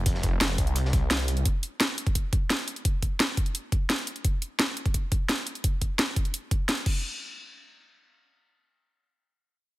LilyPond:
<<
  \new Staff \with { instrumentName = "Detuned saw bass" } { \clef bass \time 4/4 \key c \phrygian \tempo 4 = 172 f,,8 f,,8 f,,8 c,2~ c,8 | r1 | r1 | r1 |
r1 | r1 | r1 | }
  \new DrumStaff \with { instrumentName = "Drums" } \drummode { \time 4/4 <hh bd>16 sn16 <hh bd>8 <hh sn>8 <hh bd>16 hh16 hh16 sn16 <hh bd>8 <hh sn>16 hh16 hh16 hh16 | <hh bd>8 hh8 <hh sn>8 hh16 <hh bd>16 <hh bd>8 <hh bd>8 <hh sn>16 hh16 hh16 hh16 | <hh bd>8 <hh bd>8 <hh sn>8 <hh bd>16 hh16 hh8 <hh bd>8 <hh sn>16 hh16 hh16 hh16 | <hh bd>8 hh8 <hh sn>8 hh16 <hh bd>16 <hh bd>8 <hh bd>8 <hh sn>16 hh16 hh16 hh16 |
<hh bd>8 <hh bd>8 <hh sn>8 <hh bd>16 hh16 hh8 <hh bd>8 <hh sn>16 hh16 <cymc bd>8 | r4 r4 r4 r4 | r4 r4 r4 r4 | }
>>